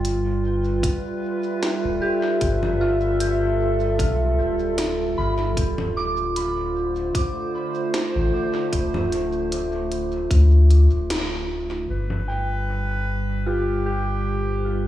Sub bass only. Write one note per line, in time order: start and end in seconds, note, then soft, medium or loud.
0.00 0.80 G1 medium
1.84 2.00 D1 medium
2.41 4.01 G1 medium
3.99 4.34 B1 medium
4.39 5.14 D1 medium
5.18 5.53 G1 loud
5.57 7.12 D1 loud
8.15 8.31 A1 loud
8.73 10.27 D1 loud
10.31 10.87 D2 loud
10.92 11.85 D1 medium
11.89 14.88 G1 medium